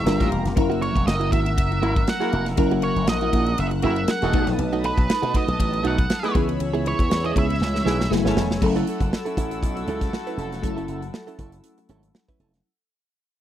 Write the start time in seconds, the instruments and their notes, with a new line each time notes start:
Already playing: lead electric guitar E5
0.05 slap bass G1, fm electric piano G3 A#3 D4 F4 A#4, analog synth pad G4 F5 A#5, snare, ride
0.20 slap bass A1, horn section A#3 F4 G4 A#4, kick, snare, ride
0.31 slap bass E1, ride
0.45 slap bass F1, snare, ride
0.55 slap bass F#1, fm electric piano F#3 A#3 C#4 E4 A#4, analog synth pad A#4 F#5 E6, muted clean electric guitar stroke, kick, ride
0.70 clean electric guitar A#3 E4 F#4, ride
0.81 clean electric guitar A#3 E4 F#4, lead electric guitar C#5, ride
0.95 slap bass E1, muted clean electric guitar stroke, kick, ride
1.07 slap bass F#1, lead electric guitar D#5, muted clean electric guitar stroke, snare, ride
1.20 clean electric guitar A#3 E4 F#4, ride
1.32 slap bass G#1, clean electric guitar A#3 E4 F#4, lead electric guitar E5, kick, ride
1.46 muted clean electric guitar stroke, ride
1.58 slap bass F#1, kick, ride
1.71 muted clean electric guitar stroke, ride
1.81 slap bass G#1, horn section A#3 E4 F#4 A#4, clean electric guitar A#3 E4 F#4, ride
1.96 muted clean electric guitar stroke, kick, ride
2.07 lead electric guitar F#5, muted clean electric guitar stroke, snare, ride
2.20 horn section A#3 E4 F#4 A#4, clean electric guitar A#3 E4 G#4, snare, ride
2.32 slap bass F1, clean electric guitar A#3 E4 F#4, ride
2.46 muted clean electric guitar stroke, snare, ride
2.57 slap bass F#1, fm electric piano F#3 A#3 C#4 E4 A#4, analog synth pad F#6, muted clean electric guitar stroke, kick, ride
2.71 clean electric guitar A#3 E4 F#4, ride
2.82 clean electric guitar A#3 E4 F#4, lead electric guitar C#5, ride
2.96 slap bass F#1, ride
3.07 slap bass A#1, lead electric guitar D#5, muted clean electric guitar stroke, snare, ride
3.21 clean electric guitar A#3 E4 F#4, ride
3.33 slap bass A#1, clean electric guitar A#3 E4 F#4, kick, ride
3.46 muted clean electric guitar stroke, ride
3.58 slap bass F#1, lead electric guitar E5, muted clean electric guitar stroke, ride
3.71 muted clean electric guitar stroke, ride
3.82 slap bass F#1, fm electric piano F#3 A#3 C#4 E4 G#4, horn section A#3 E4 F#4 A#4, clean electric guitar A#3 E4 F#4, lead electric guitar E5, ride
3.90 fm electric piano A#4
3.96 muted clean electric guitar stroke, ride
4.08 lead electric guitar F#5, muted clean electric guitar stroke, snare, ride
4.22 slap bass E1, horn section A3 D#4 F#4 A4, clean electric guitar A#3 E4 G#4, snare, ride
4.32 slap bass B1, fm electric piano F#3 A3 B3 D#4 A4, clean electric guitar A3 D#4 F#4, analog synth pad B4 A5 D#6, kick, ride
4.47 slap bass A#1, muted clean electric guitar stroke, snare, ride
4.59 slap bass B1, muted clean electric guitar stroke, ride
4.73 clean electric guitar A3 D#4 F#4, ride
4.84 clean electric guitar A3 D#4, lead electric guitar B4, ride
4.97 slap bass B1, muted clean electric guitar stroke, kick, ride
5.09 muted slap bass stroke, muted clean electric guitar stroke, snare, ride
5.22 slap bass B2, clean electric guitar A3 D#4 F#4, ride
5.34 clean electric guitar A3 D#4 F#4, lead electric guitar D#5, kick, ride
5.47 slap bass B1, muted clean electric guitar stroke, ride
5.59 slap bass A1, muted clean electric guitar stroke, kick, ride
5.73 muted clean electric guitar stroke, ride
5.84 slap bass B1, clean electric guitar A3 D#4 F#4, horn section A3 D#4 F#4 A4, lead electric guitar F#5, ride
5.98 muted clean electric guitar stroke, kick, ride
6.10 muted clean electric guitar stroke, snare, ride
6.23 clean electric guitar A3 D#4 G#4, horn section B3 E4 G#4 B4, snare, ride
6.34 slap bass C#2, fm electric piano E3 G#3 B3 C#4 G#4, clean electric guitar B3 E4 G#4, analog synth pad C#5 B5 E6, kick, ride
6.49 muted clean electric guitar stroke, ride
6.60 slap bass C#2, muted clean electric guitar stroke, ride
6.74 clean electric guitar B3 E4 G#4, ride
6.85 clean electric guitar B3 E4 G#4, lead electric guitar C#5, ride
6.99 slap bass E2, kick, ride
7.10 slap bass E2, muted clean electric guitar stroke, snare, ride
7.24 clean electric guitar B3 E4 G#4, lead electric guitar D#5, ride
7.35 slap bass C#2, clean electric guitar B3 E4 G#4, lead electric guitar E5, kick, ride
7.49 muted clean electric guitar stroke, ride
7.61 slap bass C#2, muted clean electric guitar stroke, snare
7.74 muted clean electric guitar stroke, snare
7.85 slap bass B1, clean electric guitar B3 E4 G#4, horn section B3 E4 G#4 B4, snare
8.00 muted clean electric guitar stroke, snare
8.10 slap bass F#1, fm electric piano F#3 A3 B3 E4 G#4, analog synth pad A3 G#5, muted clean electric guitar stroke, snare
8.25 slap bass G#1, clean electric guitar B3 E4 B4, horn section C#4 A4 C#5, snare
8.36 slap bass E1, clean electric guitar B3 E4 A4, snare
8.50 slap bass F1, muted clean electric guitar stroke, snare
8.61 slap bass F#1, fm electric piano F#3 A3 C#4 E4 A4, horn section A3 E4 F#4 A4, analog synth pad A4 F#5 E6, muted clean electric guitar stroke, kick, crash
8.76 clean electric guitar C#4 E4 A4, closed hi-hat
8.87 clean electric guitar C#4 E4 A4, closed hi-hat
9.00 slap bass F#1, muted clean electric guitar stroke, kick, closed hi-hat
9.13 muted clean electric guitar stroke, snare
9.25 clean electric guitar C#4 E4 A4, closed hi-hat
9.37 slap bass A1, clean electric guitar C#4 E4 A4, kick, closed hi-hat
9.51 muted clean electric guitar stroke, closed hi-hat
9.62 slap bass B1, muted clean electric guitar stroke, kick, closed hi-hat
9.77 muted clean electric guitar stroke, closed hi-hat
9.87 slap bass C#2, clean electric guitar C#4 E4 A4, closed hi-hat
10.01 muted clean electric guitar stroke, kick, snare, closed hi-hat
10.13 muted clean electric guitar stroke, snare
10.27 clean electric guitar C#4 E4 B4, closed hi-hat
10.37 slap bass F1, clean electric guitar C#4 E4 A4, closed hi-hat
10.52 muted clean electric guitar stroke, snare, closed hi-hat
10.62 slap bass F#1, fm electric piano F#3 A3 C#4 E4 A4, muted clean electric guitar stroke, kick, closed hi-hat
10.77 clean electric guitar C#4 E4 A4, closed hi-hat
10.88 slap bass F#1, clean electric guitar C#4 E4 A4, closed hi-hat
11.02 muted clean electric guitar stroke, closed hi-hat
11.13 muted clean electric guitar stroke, snare
11.27 clean electric guitar C#4 E4 A4, closed hi-hat
11.39 slap bass F#1, clean electric guitar C#4 E4 A4, kick, closed hi-hat
11.52 muted clean electric guitar stroke, closed hi-hat
11.64 muted clean electric guitar stroke, closed hi-hat
11.78 muted clean electric guitar stroke, closed hi-hat
11.89 slap bass G#1, clean electric guitar C#4 E4 A4, closed hi-hat
12.03 muted clean electric guitar stroke, closed hi-hat
12.14 muted clean electric guitar stroke, snare
12.28 clean electric guitar C#4 E4 B4, kick, closed hi-hat
12.39 slap bass F1, clean electric guitar C#4 E4 A4, closed hi-hat
12.54 snare, closed hi-hat